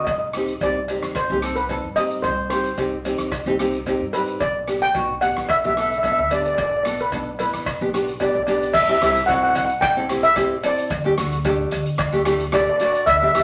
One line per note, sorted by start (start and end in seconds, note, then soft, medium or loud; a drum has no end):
0.04 0.54 C2 medium
0.04 0.10 D#5 medium
0.04 kick medium
0.04 closed hi-hat soft
0.04 cowbell medium
0.11 0.17 D#5 medium
0.18 0.25 D#5 medium
0.33 0.52 C4 medium
0.33 0.52 D#4 medium
0.33 0.52 G4 medium
0.33 cross-stick medium
0.33 closed hi-hat medium
0.48 closed hi-hat medium
0.61 0.97 C2 medium
0.61 0.79 C4 medium
0.61 0.79 D#4 medium
0.61 0.79 G4 medium
0.61 1.18 D5 medium
0.61 kick medium
0.61 closed hi-hat medium
0.61 cowbell medium
0.88 1.13 C4 medium
0.88 1.13 D#4 medium
0.88 1.14 G4 medium
0.88 closed hi-hat medium
0.88 cowbell medium
1.03 1.26 C2 medium
1.03 cross-stick medium
1.03 closed hi-hat medium
1.15 1.58 C5 medium
1.15 kick loud
1.15 cross-stick medium
1.15 closed hi-hat medium
1.15 cowbell medium
1.30 1.76 C2 medium
1.30 1.38 C4 medium
1.30 1.38 D#4 medium
1.30 1.38 G4 medium
1.42 1.60 C4 medium
1.42 1.60 D#4 medium
1.42 1.60 A4 medium
1.42 cross-stick medium
1.42 closed hi-hat medium
1.56 1.97 B4 medium
1.56 closed hi-hat medium
1.69 1.86 C4 medium
1.69 1.86 D#4 medium
1.69 1.87 A4 medium
1.69 kick medium
1.69 closed hi-hat medium
1.69 cowbell medium
1.84 2.19 G2 medium
1.96 2.30 C4 medium
1.96 2.30 D#4 medium
1.96 2.30 G4 medium
1.96 2.22 D#5 medium
1.96 closed hi-hat medium
1.96 cowbell soft
2.10 closed hi-hat medium
2.22 2.71 C2 medium
2.22 2.49 C5 medium
2.22 kick medium
2.22 closed hi-hat medium
2.22 cowbell medium
2.50 2.68 C4 medium
2.50 2.68 D#4 medium
2.50 2.69 G4 medium
2.50 3.55 C5 medium
2.50 cross-stick medium
2.50 closed hi-hat medium
2.65 closed hi-hat medium
2.77 3.14 C2 medium
2.77 2.95 C4 medium
2.77 2.95 D#4 medium
2.77 2.95 G4 medium
2.77 kick medium
2.77 closed hi-hat medium
2.77 cowbell medium
3.05 3.30 C4 medium
3.05 3.30 D#4 medium
3.05 3.30 G4 medium
3.05 closed hi-hat medium
3.05 cowbell medium
3.18 3.42 C2 medium
3.18 cross-stick medium
3.18 closed hi-hat medium
3.32 kick loud
3.32 cross-stick medium
3.32 closed hi-hat medium
3.32 cowbell medium
3.46 3.93 C2 medium
3.46 3.54 C4 medium
3.46 3.55 D#4 medium
3.46 3.55 G4 medium
3.59 3.76 C4 medium
3.59 3.76 D#4 medium
3.59 3.77 G4 medium
3.59 cross-stick medium
3.59 closed hi-hat medium
3.73 closed hi-hat medium
3.86 4.03 C4 medium
3.86 4.04 D#4 medium
3.86 4.04 G4 medium
3.86 kick medium
3.86 closed hi-hat medium
3.86 cowbell medium
4.01 4.35 G2 medium
4.13 4.41 C4 medium
4.13 4.41 D#4 medium
4.13 4.42 G4 medium
4.13 4.41 B4 medium
4.13 closed hi-hat medium
4.13 cowbell medium
4.27 closed hi-hat medium
4.40 4.87 B1 medium
4.40 4.83 D5 medium
4.40 kick loud
4.40 closed hi-hat medium
4.40 cowbell medium
4.67 4.84 B3 medium
4.67 4.84 D4 medium
4.67 4.85 G4 medium
4.67 cross-stick medium
4.67 closed hi-hat medium
4.82 5.23 G5 medium
4.82 closed hi-hat medium
4.94 5.31 B1 medium
4.94 5.11 B3 medium
4.94 5.12 D4 medium
4.94 5.12 F#4 medium
4.94 kick medium
4.94 closed hi-hat medium
4.94 cowbell medium
5.21 5.46 B3 medium
5.21 5.46 D4 medium
5.21 5.47 G4 medium
5.21 5.50 F#5 medium
5.21 closed hi-hat medium
5.21 cowbell medium
5.37 5.60 B1 medium
5.37 cross-stick medium
5.37 closed hi-hat soft
5.49 5.56 E5 medium
5.49 kick loud
5.49 cross-stick medium
5.49 closed hi-hat medium
5.49 cowbell medium
5.57 5.64 E5 medium
5.64 6.11 B1 medium
5.64 5.72 B3 medium
5.64 5.71 D4 medium
5.64 5.72 G4 medium
5.64 5.72 E5 medium
5.74 5.94 B3 medium
5.74 5.94 D4 medium
5.74 5.94 A4 medium
5.74 5.79 E5 medium
5.74 cross-stick medium
5.74 closed hi-hat medium
5.81 5.87 E5 medium
5.90 5.96 E5 medium
5.90 closed hi-hat soft
5.98 6.02 E5 medium
6.03 6.21 B3 medium
6.03 6.21 D4 medium
6.03 6.21 A4 medium
6.03 6.10 E5 medium
6.03 kick medium
6.03 closed hi-hat medium
6.03 cowbell medium
6.12 6.18 E5 medium
6.19 6.53 D2 medium
6.19 6.25 E5 medium
6.31 6.64 B3 medium
6.31 6.64 D4 medium
6.31 6.64 G4 medium
6.31 6.39 D5 medium
6.31 closed hi-hat medium
6.31 cowbell medium
6.41 6.46 D5 medium
6.45 6.54 D5 medium
6.45 closed hi-hat medium
6.55 7.05 B1 medium
6.55 6.61 D5 medium
6.55 kick medium
6.55 closed hi-hat medium
6.55 cowbell medium
6.62 6.69 D5 medium
6.70 6.75 D5 medium
6.77 6.82 D5 medium
6.83 7.02 B3 medium
6.83 7.02 D4 medium
6.83 7.02 A4 medium
6.83 6.91 D5 medium
6.83 cross-stick medium
6.83 closed hi-hat medium
6.99 7.39 B4 medium
6.99 closed hi-hat medium
7.12 7.48 B1 medium
7.12 7.29 B3 medium
7.12 7.29 D4 medium
7.12 7.30 A4 medium
7.12 kick medium
7.12 closed hi-hat medium
7.12 cowbell medium
7.39 7.64 B3 medium
7.39 7.64 D4 medium
7.39 7.64 E4 medium
7.39 8.44 B4 medium
7.39 closed hi-hat medium
7.39 cowbell medium
7.54 7.77 B1 medium
7.54 cross-stick medium
7.54 closed hi-hat medium
7.66 kick loud
7.66 cross-stick medium
7.66 closed hi-hat medium
7.66 cowbell medium
7.81 8.27 B1 medium
7.81 7.89 B3 medium
7.81 7.89 D4 medium
7.81 7.89 G4 medium
7.93 8.10 B3 medium
7.93 8.10 D4 medium
7.93 8.11 G4 medium
7.93 cross-stick medium
7.93 closed hi-hat medium
8.08 closed hi-hat medium
8.20 8.37 B3 medium
8.20 8.37 D4 medium
8.20 8.37 G4 medium
8.20 8.28 D5 medium
8.20 kick medium
8.20 closed hi-hat medium
8.20 cowbell medium
8.29 8.34 D5 medium
8.35 8.69 B1 medium
8.35 8.42 D5 medium
8.43 8.48 D5 medium
8.43 cowbell medium
8.47 8.74 B3 medium
8.47 8.74 D4 medium
8.47 8.75 G4 medium
8.47 8.56 D5 medium
8.47 closed hi-hat medium
8.57 8.65 D5 medium
8.62 closed hi-hat medium
8.73 8.98 C2 medium
8.73 8.80 E5 medium
8.73 kick loud
8.73 crash loud
8.73 cowbell medium
8.82 8.89 E5 medium
8.88 8.96 C4 medium
8.88 8.96 E4 medium
8.88 8.97 G4 medium
8.88 8.95 E5 medium
8.96 9.02 E5 medium
9.02 9.49 C2 medium
9.02 9.18 C4 medium
9.02 9.18 E4 medium
9.02 9.18 G4 medium
9.02 9.09 E5 medium
9.02 cross-stick medium
9.02 closed hi-hat medium
9.11 9.19 E5 medium
9.16 closed hi-hat medium
9.26 9.69 C4 medium
9.26 9.69 E4 medium
9.26 9.70 F#4 medium
9.26 9.33 F#5 medium
9.26 kick medium
9.26 closed hi-hat medium
9.26 cowbell medium
9.34 9.42 F#5 medium
9.43 9.48 F#5 medium
9.49 9.55 F#5 medium
9.55 10.49 C2 medium
9.55 9.64 F#5 medium
9.55 closed hi-hat medium
9.55 cowbell medium
9.65 9.73 F#5 medium
9.69 closed hi-hat medium
9.81 10.24 G5 loud
9.81 kick loud
9.81 cross-stick medium
9.81 closed hi-hat medium
9.81 cowbell medium
9.96 10.04 C4 medium
9.96 10.04 E4 medium
9.96 10.04 A4 medium
10.09 10.26 C4 medium
10.09 10.26 E4 medium
10.09 10.27 G4 medium
10.09 cross-stick medium
10.09 closed hi-hat medium
10.23 10.61 E5 medium
10.23 closed hi-hat medium
10.36 10.54 C4 medium
10.36 10.54 E4 medium
10.36 10.54 G4 medium
10.36 kick medium
10.36 cross-stick medium
10.36 closed hi-hat medium
10.36 cowbell medium
10.63 10.88 C4 medium
10.63 10.89 E4 medium
10.63 10.88 A4 medium
10.63 12.23 D5 medium
10.63 closed hi-hat medium
10.63 cowbell medium
10.78 closed hi-hat medium
10.90 11.14 D2 medium
10.90 kick loud
10.90 closed hi-hat medium
10.90 cowbell medium
11.04 11.12 A3 medium
11.04 11.13 D4 medium
11.04 11.13 G4 medium
11.18 11.64 D2 medium
11.18 11.34 A3 medium
11.18 11.35 D4 medium
11.18 11.35 F#4 medium
11.18 cross-stick medium
11.18 closed hi-hat medium
11.32 closed hi-hat medium
11.45 11.86 A3 medium
11.45 11.86 D4 medium
11.45 11.86 G4 loud
11.45 kick medium
11.45 closed hi-hat medium
11.45 cowbell medium
11.71 12.65 D2 medium
11.71 closed hi-hat medium
11.71 cowbell medium
11.86 closed hi-hat medium
11.98 kick loud
11.98 cross-stick medium
11.98 closed hi-hat medium
11.98 cowbell medium
12.12 12.21 A3 medium
12.12 12.20 D4 medium
12.12 12.21 G4 medium
12.25 12.43 A3 medium
12.25 12.42 D4 medium
12.25 12.43 G4 loud
12.25 cross-stick medium
12.25 closed hi-hat medium
12.40 closed hi-hat medium
12.52 12.69 A3 medium
12.52 12.69 D4 medium
12.52 12.70 G4 medium
12.52 12.60 D5 medium
12.52 kick medium
12.52 cross-stick medium
12.52 closed hi-hat medium
12.52 cowbell medium
12.61 12.68 D5 medium
12.69 12.75 D5 medium
12.76 13.04 A3 medium
12.76 13.04 D4 medium
12.76 12.84 D5 medium
12.76 closed hi-hat medium
12.81 13.05 F#4 medium
12.81 cowbell medium
12.85 12.91 D5 medium
12.92 12.99 D5 medium
12.92 closed hi-hat medium
13.06 13.30 D2 medium
13.06 13.14 E5 medium
13.06 kick loud
13.06 closed hi-hat medium
13.06 cowbell medium
13.16 13.23 E5 medium
13.22 13.29 B3 medium
13.22 13.29 D4 medium
13.22 13.29 G4 medium
13.22 13.30 E5 medium
13.32 13.43 D2 medium
13.32 13.43 B3 medium
13.32 13.43 D4 medium
13.32 13.43 G4 medium
13.32 13.38 E5 medium
13.32 cross-stick medium
13.32 closed hi-hat medium
13.40 13.43 E5 medium